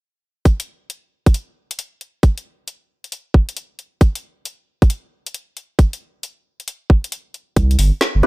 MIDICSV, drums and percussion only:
0, 0, Header, 1, 2, 480
1, 0, Start_track
1, 0, Key_signature, 0, "major"
1, 0, Tempo, 444444
1, 491, Time_signature, 4, 2, 24, 8
1, 8927, End_track
2, 0, Start_track
2, 0, Title_t, "Drums"
2, 490, Note_on_c, 9, 36, 112
2, 491, Note_on_c, 9, 42, 60
2, 598, Note_off_c, 9, 36, 0
2, 599, Note_off_c, 9, 42, 0
2, 646, Note_on_c, 9, 42, 65
2, 754, Note_off_c, 9, 42, 0
2, 971, Note_on_c, 9, 42, 61
2, 1079, Note_off_c, 9, 42, 0
2, 1365, Note_on_c, 9, 36, 93
2, 1366, Note_on_c, 9, 42, 34
2, 1451, Note_off_c, 9, 42, 0
2, 1451, Note_on_c, 9, 42, 62
2, 1473, Note_off_c, 9, 36, 0
2, 1559, Note_off_c, 9, 42, 0
2, 1846, Note_on_c, 9, 42, 61
2, 1930, Note_off_c, 9, 42, 0
2, 1930, Note_on_c, 9, 42, 65
2, 2038, Note_off_c, 9, 42, 0
2, 2171, Note_on_c, 9, 42, 35
2, 2279, Note_off_c, 9, 42, 0
2, 2410, Note_on_c, 9, 36, 116
2, 2410, Note_on_c, 9, 42, 61
2, 2518, Note_off_c, 9, 36, 0
2, 2518, Note_off_c, 9, 42, 0
2, 2565, Note_on_c, 9, 42, 59
2, 2673, Note_off_c, 9, 42, 0
2, 2890, Note_on_c, 9, 42, 60
2, 2998, Note_off_c, 9, 42, 0
2, 3285, Note_on_c, 9, 42, 33
2, 3370, Note_off_c, 9, 42, 0
2, 3370, Note_on_c, 9, 42, 60
2, 3478, Note_off_c, 9, 42, 0
2, 3610, Note_on_c, 9, 36, 100
2, 3718, Note_off_c, 9, 36, 0
2, 3766, Note_on_c, 9, 42, 59
2, 3851, Note_off_c, 9, 42, 0
2, 3851, Note_on_c, 9, 42, 63
2, 3959, Note_off_c, 9, 42, 0
2, 4091, Note_on_c, 9, 42, 33
2, 4199, Note_off_c, 9, 42, 0
2, 4331, Note_on_c, 9, 36, 116
2, 4331, Note_on_c, 9, 42, 58
2, 4439, Note_off_c, 9, 36, 0
2, 4439, Note_off_c, 9, 42, 0
2, 4487, Note_on_c, 9, 42, 60
2, 4595, Note_off_c, 9, 42, 0
2, 4811, Note_on_c, 9, 42, 59
2, 4919, Note_off_c, 9, 42, 0
2, 5206, Note_on_c, 9, 36, 105
2, 5207, Note_on_c, 9, 42, 34
2, 5292, Note_off_c, 9, 42, 0
2, 5292, Note_on_c, 9, 42, 60
2, 5314, Note_off_c, 9, 36, 0
2, 5400, Note_off_c, 9, 42, 0
2, 5686, Note_on_c, 9, 42, 57
2, 5772, Note_off_c, 9, 42, 0
2, 5772, Note_on_c, 9, 42, 62
2, 5880, Note_off_c, 9, 42, 0
2, 6012, Note_on_c, 9, 42, 33
2, 6120, Note_off_c, 9, 42, 0
2, 6251, Note_on_c, 9, 36, 116
2, 6252, Note_on_c, 9, 42, 60
2, 6359, Note_off_c, 9, 36, 0
2, 6360, Note_off_c, 9, 42, 0
2, 6407, Note_on_c, 9, 42, 62
2, 6515, Note_off_c, 9, 42, 0
2, 6731, Note_on_c, 9, 42, 61
2, 6839, Note_off_c, 9, 42, 0
2, 7126, Note_on_c, 9, 42, 35
2, 7211, Note_off_c, 9, 42, 0
2, 7211, Note_on_c, 9, 42, 62
2, 7319, Note_off_c, 9, 42, 0
2, 7450, Note_on_c, 9, 36, 103
2, 7558, Note_off_c, 9, 36, 0
2, 7606, Note_on_c, 9, 42, 60
2, 7690, Note_off_c, 9, 42, 0
2, 7690, Note_on_c, 9, 42, 61
2, 7798, Note_off_c, 9, 42, 0
2, 7930, Note_on_c, 9, 42, 33
2, 8038, Note_off_c, 9, 42, 0
2, 8170, Note_on_c, 9, 36, 109
2, 8170, Note_on_c, 9, 42, 63
2, 8278, Note_off_c, 9, 36, 0
2, 8278, Note_off_c, 9, 42, 0
2, 8325, Note_on_c, 9, 42, 62
2, 8410, Note_on_c, 9, 46, 94
2, 8433, Note_off_c, 9, 42, 0
2, 8518, Note_off_c, 9, 46, 0
2, 8650, Note_on_c, 9, 38, 114
2, 8650, Note_on_c, 9, 42, 64
2, 8758, Note_off_c, 9, 38, 0
2, 8758, Note_off_c, 9, 42, 0
2, 8891, Note_on_c, 9, 46, 82
2, 8927, Note_off_c, 9, 46, 0
2, 8927, End_track
0, 0, End_of_file